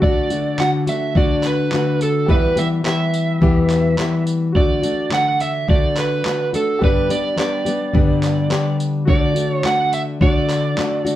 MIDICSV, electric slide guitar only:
0, 0, Header, 1, 2, 480
1, 0, Start_track
1, 0, Key_signature, 2, "major"
1, 0, Tempo, 566091
1, 17, Time_signature, 4, 2, 24, 8
1, 9459, End_track
2, 0, Start_track
2, 0, Title_t, "Electric slide guitar"
2, 0, Program_c, 0, 29
2, 26, Note_on_c, 0, 74, 104
2, 508, Note_on_c, 0, 78, 103
2, 516, Note_off_c, 0, 74, 0
2, 571, Note_off_c, 0, 78, 0
2, 755, Note_on_c, 0, 76, 107
2, 970, Note_off_c, 0, 76, 0
2, 993, Note_on_c, 0, 74, 108
2, 1232, Note_off_c, 0, 74, 0
2, 1242, Note_on_c, 0, 71, 103
2, 1716, Note_off_c, 0, 71, 0
2, 1719, Note_on_c, 0, 69, 81
2, 1932, Note_off_c, 0, 69, 0
2, 1954, Note_on_c, 0, 71, 99
2, 2192, Note_off_c, 0, 71, 0
2, 2193, Note_on_c, 0, 76, 106
2, 2256, Note_off_c, 0, 76, 0
2, 2428, Note_on_c, 0, 76, 88
2, 3589, Note_off_c, 0, 76, 0
2, 3870, Note_on_c, 0, 74, 104
2, 4353, Note_on_c, 0, 78, 100
2, 4358, Note_off_c, 0, 74, 0
2, 4587, Note_on_c, 0, 76, 94
2, 4592, Note_off_c, 0, 78, 0
2, 4829, Note_off_c, 0, 76, 0
2, 4834, Note_on_c, 0, 74, 111
2, 5072, Note_off_c, 0, 74, 0
2, 5078, Note_on_c, 0, 71, 96
2, 5515, Note_off_c, 0, 71, 0
2, 5557, Note_on_c, 0, 69, 84
2, 5794, Note_off_c, 0, 69, 0
2, 5800, Note_on_c, 0, 71, 103
2, 6013, Note_off_c, 0, 71, 0
2, 6029, Note_on_c, 0, 74, 100
2, 6260, Note_off_c, 0, 74, 0
2, 6271, Note_on_c, 0, 74, 77
2, 7430, Note_off_c, 0, 74, 0
2, 7711, Note_on_c, 0, 74, 88
2, 8067, Note_off_c, 0, 74, 0
2, 8067, Note_on_c, 0, 73, 88
2, 8189, Note_on_c, 0, 78, 96
2, 8198, Note_off_c, 0, 73, 0
2, 8406, Note_off_c, 0, 78, 0
2, 8426, Note_on_c, 0, 76, 85
2, 8489, Note_off_c, 0, 76, 0
2, 8668, Note_on_c, 0, 74, 105
2, 9459, Note_off_c, 0, 74, 0
2, 9459, End_track
0, 0, End_of_file